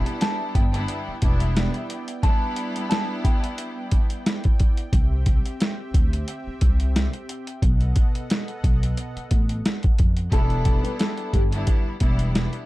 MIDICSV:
0, 0, Header, 1, 7, 480
1, 0, Start_track
1, 0, Key_signature, 1, "minor"
1, 0, Tempo, 674157
1, 1589, Time_signature, 4, 2, 24, 8
1, 9012, End_track
2, 0, Start_track
2, 0, Title_t, "Nylon-string guitar"
2, 0, Program_c, 0, 24
2, 36, Note_on_c, 0, 83, 72
2, 135, Note_off_c, 0, 83, 0
2, 152, Note_on_c, 0, 81, 79
2, 367, Note_off_c, 0, 81, 0
2, 391, Note_on_c, 0, 79, 84
2, 1214, Note_off_c, 0, 79, 0
2, 1588, Note_on_c, 0, 81, 106
2, 1939, Note_off_c, 0, 81, 0
2, 1970, Note_on_c, 0, 83, 71
2, 2058, Note_off_c, 0, 83, 0
2, 2061, Note_on_c, 0, 81, 78
2, 2281, Note_off_c, 0, 81, 0
2, 2308, Note_on_c, 0, 79, 69
2, 3480, Note_off_c, 0, 79, 0
2, 7355, Note_on_c, 0, 69, 96
2, 7702, Note_off_c, 0, 69, 0
2, 7715, Note_on_c, 0, 71, 74
2, 7815, Note_off_c, 0, 71, 0
2, 7833, Note_on_c, 0, 69, 75
2, 8047, Note_off_c, 0, 69, 0
2, 8071, Note_on_c, 0, 67, 79
2, 8894, Note_off_c, 0, 67, 0
2, 9012, End_track
3, 0, Start_track
3, 0, Title_t, "Analog synth pad"
3, 0, Program_c, 1, 89
3, 0, Note_on_c, 1, 59, 90
3, 0, Note_on_c, 1, 64, 76
3, 0, Note_on_c, 1, 74, 68
3, 0, Note_on_c, 1, 79, 86
3, 3474, Note_off_c, 1, 59, 0
3, 3474, Note_off_c, 1, 64, 0
3, 3474, Note_off_c, 1, 74, 0
3, 3508, Note_on_c, 1, 76, 76
3, 3509, Note_on_c, 1, 60, 81
3, 3509, Note_on_c, 1, 67, 71
3, 5394, Note_off_c, 1, 79, 0
3, 5410, Note_off_c, 1, 60, 0
3, 5410, Note_off_c, 1, 67, 0
3, 5410, Note_off_c, 1, 76, 0
3, 5435, Note_on_c, 1, 78, 97
3, 5437, Note_on_c, 1, 59, 80
3, 5437, Note_on_c, 1, 69, 75
3, 5437, Note_on_c, 1, 75, 71
3, 7333, Note_off_c, 1, 78, 0
3, 7334, Note_off_c, 1, 59, 0
3, 7334, Note_off_c, 1, 69, 0
3, 7334, Note_off_c, 1, 75, 0
3, 9012, End_track
4, 0, Start_track
4, 0, Title_t, "String section"
4, 0, Program_c, 2, 48
4, 0, Note_on_c, 2, 55, 104
4, 0, Note_on_c, 2, 59, 97
4, 0, Note_on_c, 2, 62, 99
4, 0, Note_on_c, 2, 64, 118
4, 447, Note_off_c, 2, 55, 0
4, 447, Note_off_c, 2, 59, 0
4, 448, Note_off_c, 2, 62, 0
4, 449, Note_off_c, 2, 64, 0
4, 517, Note_on_c, 2, 55, 96
4, 518, Note_on_c, 2, 59, 90
4, 519, Note_on_c, 2, 62, 91
4, 521, Note_on_c, 2, 64, 109
4, 841, Note_off_c, 2, 55, 0
4, 842, Note_off_c, 2, 59, 0
4, 842, Note_off_c, 2, 62, 0
4, 843, Note_off_c, 2, 64, 0
4, 866, Note_on_c, 2, 55, 98
4, 868, Note_on_c, 2, 59, 96
4, 868, Note_on_c, 2, 62, 94
4, 870, Note_on_c, 2, 64, 112
4, 1427, Note_off_c, 2, 55, 0
4, 1428, Note_off_c, 2, 59, 0
4, 1428, Note_off_c, 2, 62, 0
4, 1429, Note_off_c, 2, 64, 0
4, 1588, Note_on_c, 2, 55, 108
4, 1590, Note_on_c, 2, 59, 110
4, 1591, Note_on_c, 2, 62, 103
4, 1592, Note_on_c, 2, 64, 127
4, 3145, Note_off_c, 2, 55, 0
4, 3146, Note_off_c, 2, 59, 0
4, 3147, Note_off_c, 2, 62, 0
4, 3147, Note_off_c, 2, 64, 0
4, 7347, Note_on_c, 2, 55, 106
4, 7347, Note_on_c, 2, 59, 95
4, 7349, Note_on_c, 2, 62, 95
4, 7350, Note_on_c, 2, 64, 113
4, 8126, Note_off_c, 2, 55, 0
4, 8127, Note_off_c, 2, 59, 0
4, 8128, Note_off_c, 2, 62, 0
4, 8128, Note_off_c, 2, 64, 0
4, 8196, Note_on_c, 2, 55, 91
4, 8198, Note_on_c, 2, 59, 88
4, 8199, Note_on_c, 2, 62, 89
4, 8201, Note_on_c, 2, 64, 105
4, 8521, Note_off_c, 2, 55, 0
4, 8522, Note_off_c, 2, 59, 0
4, 8522, Note_off_c, 2, 62, 0
4, 8523, Note_off_c, 2, 64, 0
4, 8545, Note_on_c, 2, 55, 97
4, 8547, Note_on_c, 2, 59, 91
4, 8549, Note_on_c, 2, 62, 87
4, 8549, Note_on_c, 2, 64, 106
4, 9012, Note_off_c, 2, 55, 0
4, 9012, Note_off_c, 2, 59, 0
4, 9012, Note_off_c, 2, 62, 0
4, 9012, Note_off_c, 2, 64, 0
4, 9012, End_track
5, 0, Start_track
5, 0, Title_t, "Upright bass"
5, 0, Program_c, 3, 32
5, 393, Note_on_c, 3, 31, 97
5, 594, Note_off_c, 3, 31, 0
5, 873, Note_on_c, 3, 28, 100
5, 1186, Note_off_c, 3, 28, 0
5, 3510, Note_on_c, 3, 36, 107
5, 3824, Note_off_c, 3, 36, 0
5, 4233, Note_on_c, 3, 38, 89
5, 4434, Note_off_c, 3, 38, 0
5, 4713, Note_on_c, 3, 36, 100
5, 5026, Note_off_c, 3, 36, 0
5, 5430, Note_on_c, 3, 35, 111
5, 5632, Note_off_c, 3, 35, 0
5, 6152, Note_on_c, 3, 35, 98
5, 6354, Note_off_c, 3, 35, 0
5, 6632, Note_on_c, 3, 33, 92
5, 6834, Note_off_c, 3, 33, 0
5, 7118, Note_on_c, 3, 41, 90
5, 7317, Note_off_c, 3, 41, 0
5, 7349, Note_on_c, 3, 28, 99
5, 7663, Note_off_c, 3, 28, 0
5, 8072, Note_on_c, 3, 31, 95
5, 8273, Note_off_c, 3, 31, 0
5, 8552, Note_on_c, 3, 28, 94
5, 8865, Note_off_c, 3, 28, 0
5, 9012, End_track
6, 0, Start_track
6, 0, Title_t, "Muted upright bass strokes"
6, 768, Note_on_c, 9, 29, 46
6, 839, Note_off_c, 9, 29, 0
6, 4605, Note_on_c, 9, 29, 48
6, 4676, Note_off_c, 9, 29, 0
6, 6524, Note_on_c, 9, 29, 47
6, 6596, Note_off_c, 9, 29, 0
6, 8445, Note_on_c, 9, 29, 47
6, 8517, Note_off_c, 9, 29, 0
6, 9012, End_track
7, 0, Start_track
7, 0, Title_t, "Drums"
7, 44, Note_on_c, 9, 42, 52
7, 115, Note_off_c, 9, 42, 0
7, 150, Note_on_c, 9, 42, 100
7, 158, Note_on_c, 9, 38, 117
7, 221, Note_off_c, 9, 42, 0
7, 229, Note_off_c, 9, 38, 0
7, 391, Note_on_c, 9, 36, 98
7, 393, Note_on_c, 9, 42, 79
7, 463, Note_off_c, 9, 36, 0
7, 464, Note_off_c, 9, 42, 0
7, 528, Note_on_c, 9, 42, 58
7, 599, Note_off_c, 9, 42, 0
7, 629, Note_on_c, 9, 42, 87
7, 701, Note_off_c, 9, 42, 0
7, 867, Note_on_c, 9, 42, 81
7, 871, Note_on_c, 9, 36, 90
7, 939, Note_off_c, 9, 42, 0
7, 943, Note_off_c, 9, 36, 0
7, 999, Note_on_c, 9, 42, 51
7, 1070, Note_off_c, 9, 42, 0
7, 1115, Note_on_c, 9, 42, 96
7, 1116, Note_on_c, 9, 38, 111
7, 1186, Note_off_c, 9, 42, 0
7, 1187, Note_off_c, 9, 38, 0
7, 1240, Note_on_c, 9, 42, 38
7, 1311, Note_off_c, 9, 42, 0
7, 1352, Note_on_c, 9, 42, 72
7, 1423, Note_off_c, 9, 42, 0
7, 1480, Note_on_c, 9, 42, 54
7, 1551, Note_off_c, 9, 42, 0
7, 1589, Note_on_c, 9, 36, 119
7, 1590, Note_on_c, 9, 42, 95
7, 1660, Note_off_c, 9, 36, 0
7, 1662, Note_off_c, 9, 42, 0
7, 1825, Note_on_c, 9, 42, 77
7, 1897, Note_off_c, 9, 42, 0
7, 1964, Note_on_c, 9, 42, 51
7, 2035, Note_off_c, 9, 42, 0
7, 2070, Note_on_c, 9, 42, 95
7, 2079, Note_on_c, 9, 38, 119
7, 2141, Note_off_c, 9, 42, 0
7, 2150, Note_off_c, 9, 38, 0
7, 2311, Note_on_c, 9, 36, 101
7, 2312, Note_on_c, 9, 42, 79
7, 2382, Note_off_c, 9, 36, 0
7, 2384, Note_off_c, 9, 42, 0
7, 2447, Note_on_c, 9, 42, 59
7, 2518, Note_off_c, 9, 42, 0
7, 2549, Note_on_c, 9, 42, 88
7, 2621, Note_off_c, 9, 42, 0
7, 2787, Note_on_c, 9, 42, 80
7, 2791, Note_on_c, 9, 36, 88
7, 2859, Note_off_c, 9, 42, 0
7, 2863, Note_off_c, 9, 36, 0
7, 2919, Note_on_c, 9, 42, 52
7, 2990, Note_off_c, 9, 42, 0
7, 3036, Note_on_c, 9, 42, 97
7, 3037, Note_on_c, 9, 38, 109
7, 3107, Note_off_c, 9, 42, 0
7, 3108, Note_off_c, 9, 38, 0
7, 3160, Note_on_c, 9, 42, 37
7, 3170, Note_on_c, 9, 36, 98
7, 3231, Note_off_c, 9, 42, 0
7, 3241, Note_off_c, 9, 36, 0
7, 3272, Note_on_c, 9, 42, 72
7, 3278, Note_on_c, 9, 36, 97
7, 3343, Note_off_c, 9, 42, 0
7, 3349, Note_off_c, 9, 36, 0
7, 3399, Note_on_c, 9, 42, 54
7, 3471, Note_off_c, 9, 42, 0
7, 3508, Note_on_c, 9, 36, 113
7, 3509, Note_on_c, 9, 42, 96
7, 3579, Note_off_c, 9, 36, 0
7, 3580, Note_off_c, 9, 42, 0
7, 3745, Note_on_c, 9, 42, 80
7, 3749, Note_on_c, 9, 36, 95
7, 3817, Note_off_c, 9, 42, 0
7, 3820, Note_off_c, 9, 36, 0
7, 3884, Note_on_c, 9, 42, 52
7, 3956, Note_off_c, 9, 42, 0
7, 3991, Note_on_c, 9, 42, 97
7, 3999, Note_on_c, 9, 38, 120
7, 4062, Note_off_c, 9, 42, 0
7, 4070, Note_off_c, 9, 38, 0
7, 4231, Note_on_c, 9, 36, 97
7, 4233, Note_on_c, 9, 42, 79
7, 4302, Note_off_c, 9, 36, 0
7, 4304, Note_off_c, 9, 42, 0
7, 4366, Note_on_c, 9, 42, 59
7, 4438, Note_off_c, 9, 42, 0
7, 4470, Note_on_c, 9, 42, 88
7, 4541, Note_off_c, 9, 42, 0
7, 4708, Note_on_c, 9, 42, 81
7, 4711, Note_on_c, 9, 36, 89
7, 4779, Note_off_c, 9, 42, 0
7, 4783, Note_off_c, 9, 36, 0
7, 4840, Note_on_c, 9, 42, 50
7, 4911, Note_off_c, 9, 42, 0
7, 4955, Note_on_c, 9, 42, 95
7, 4957, Note_on_c, 9, 38, 107
7, 5027, Note_off_c, 9, 42, 0
7, 5028, Note_off_c, 9, 38, 0
7, 5080, Note_on_c, 9, 42, 37
7, 5151, Note_off_c, 9, 42, 0
7, 5192, Note_on_c, 9, 42, 71
7, 5263, Note_off_c, 9, 42, 0
7, 5320, Note_on_c, 9, 42, 54
7, 5391, Note_off_c, 9, 42, 0
7, 5428, Note_on_c, 9, 36, 113
7, 5430, Note_on_c, 9, 42, 100
7, 5499, Note_off_c, 9, 36, 0
7, 5501, Note_off_c, 9, 42, 0
7, 5558, Note_on_c, 9, 42, 36
7, 5629, Note_off_c, 9, 42, 0
7, 5665, Note_on_c, 9, 42, 78
7, 5669, Note_on_c, 9, 36, 96
7, 5736, Note_off_c, 9, 42, 0
7, 5740, Note_off_c, 9, 36, 0
7, 5804, Note_on_c, 9, 42, 53
7, 5875, Note_off_c, 9, 42, 0
7, 5911, Note_on_c, 9, 42, 102
7, 5919, Note_on_c, 9, 38, 115
7, 5982, Note_off_c, 9, 42, 0
7, 5990, Note_off_c, 9, 38, 0
7, 6039, Note_on_c, 9, 42, 37
7, 6110, Note_off_c, 9, 42, 0
7, 6151, Note_on_c, 9, 36, 98
7, 6152, Note_on_c, 9, 42, 80
7, 6222, Note_off_c, 9, 36, 0
7, 6224, Note_off_c, 9, 42, 0
7, 6287, Note_on_c, 9, 42, 58
7, 6359, Note_off_c, 9, 42, 0
7, 6390, Note_on_c, 9, 42, 89
7, 6461, Note_off_c, 9, 42, 0
7, 6527, Note_on_c, 9, 42, 37
7, 6598, Note_off_c, 9, 42, 0
7, 6627, Note_on_c, 9, 42, 79
7, 6631, Note_on_c, 9, 36, 86
7, 6698, Note_off_c, 9, 42, 0
7, 6702, Note_off_c, 9, 36, 0
7, 6759, Note_on_c, 9, 42, 52
7, 6830, Note_off_c, 9, 42, 0
7, 6875, Note_on_c, 9, 42, 97
7, 6876, Note_on_c, 9, 38, 107
7, 6946, Note_off_c, 9, 42, 0
7, 6947, Note_off_c, 9, 38, 0
7, 6998, Note_on_c, 9, 42, 37
7, 7008, Note_on_c, 9, 36, 101
7, 7069, Note_off_c, 9, 42, 0
7, 7080, Note_off_c, 9, 36, 0
7, 7109, Note_on_c, 9, 42, 71
7, 7117, Note_on_c, 9, 36, 94
7, 7181, Note_off_c, 9, 42, 0
7, 7188, Note_off_c, 9, 36, 0
7, 7238, Note_on_c, 9, 42, 52
7, 7309, Note_off_c, 9, 42, 0
7, 7347, Note_on_c, 9, 36, 112
7, 7349, Note_on_c, 9, 42, 91
7, 7418, Note_off_c, 9, 36, 0
7, 7420, Note_off_c, 9, 42, 0
7, 7476, Note_on_c, 9, 42, 35
7, 7548, Note_off_c, 9, 42, 0
7, 7584, Note_on_c, 9, 42, 77
7, 7588, Note_on_c, 9, 36, 90
7, 7655, Note_off_c, 9, 42, 0
7, 7659, Note_off_c, 9, 36, 0
7, 7722, Note_on_c, 9, 42, 50
7, 7794, Note_off_c, 9, 42, 0
7, 7828, Note_on_c, 9, 42, 93
7, 7837, Note_on_c, 9, 38, 114
7, 7899, Note_off_c, 9, 42, 0
7, 7908, Note_off_c, 9, 38, 0
7, 7956, Note_on_c, 9, 42, 36
7, 8027, Note_off_c, 9, 42, 0
7, 8070, Note_on_c, 9, 36, 96
7, 8072, Note_on_c, 9, 42, 76
7, 8141, Note_off_c, 9, 36, 0
7, 8143, Note_off_c, 9, 42, 0
7, 8205, Note_on_c, 9, 42, 56
7, 8277, Note_off_c, 9, 42, 0
7, 8308, Note_on_c, 9, 42, 81
7, 8312, Note_on_c, 9, 36, 93
7, 8380, Note_off_c, 9, 42, 0
7, 8384, Note_off_c, 9, 36, 0
7, 8546, Note_on_c, 9, 42, 77
7, 8550, Note_on_c, 9, 36, 85
7, 8617, Note_off_c, 9, 42, 0
7, 8622, Note_off_c, 9, 36, 0
7, 8679, Note_on_c, 9, 42, 50
7, 8750, Note_off_c, 9, 42, 0
7, 8796, Note_on_c, 9, 42, 94
7, 8797, Note_on_c, 9, 38, 108
7, 8867, Note_off_c, 9, 42, 0
7, 8868, Note_off_c, 9, 38, 0
7, 8920, Note_on_c, 9, 42, 37
7, 8991, Note_off_c, 9, 42, 0
7, 9012, End_track
0, 0, End_of_file